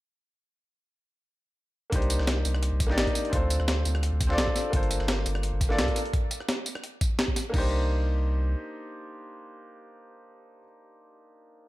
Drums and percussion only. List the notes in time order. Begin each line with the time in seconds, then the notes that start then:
1.92 kick, closed hi-hat
2.02 closed hi-hat
2.10 closed hi-hat, tambourine
2.19 cross-stick, snare
2.27 snare, closed hi-hat
2.45 closed hi-hat, open hi-hat, tambourine
2.55 cross-stick
2.63 closed hi-hat
2.80 kick, closed hi-hat, tambourine
2.90 snare
2.98 snare, closed hi-hat
3.07 kick, closed hi-hat
3.15 closed hi-hat, open hi-hat, tambourine
3.25 closed hi-hat
3.33 kick, closed hi-hat
3.50 closed hi-hat, tambourine
3.60 cross-stick
3.68 snare, closed hi-hat
3.85 closed hi-hat, open hi-hat, tambourine
3.95 cross-stick
4.03 closed hi-hat
4.21 kick, closed hi-hat, tambourine
4.30 snare
4.38 snare, closed hi-hat
4.47 kick
4.56 snare, closed hi-hat, open hi-hat, tambourine
4.73 kick, closed hi-hat
4.83 closed hi-hat
4.91 closed hi-hat, tambourine
5.00 cross-stick, snare
5.08 snare, closed hi-hat
5.26 closed hi-hat, open hi-hat, tambourine
5.35 cross-stick
5.43 closed hi-hat
5.61 kick, closed hi-hat, tambourine
5.70 snare
5.79 snare, closed hi-hat
5.88 kick, closed hi-hat
5.96 closed hi-hat, open hi-hat, tambourine
6.05 closed hi-hat
6.13 kick, closed hi-hat
6.31 closed hi-hat, tambourine
6.40 cross-stick
6.49 snare, closed hi-hat
6.66 open hi-hat, tambourine
6.75 cross-stick
6.84 closed hi-hat
7.01 kick, closed hi-hat, tambourine
7.19 snare, closed hi-hat
7.28 kick
7.36 snare, open hi-hat, tambourine
7.54 kick, crash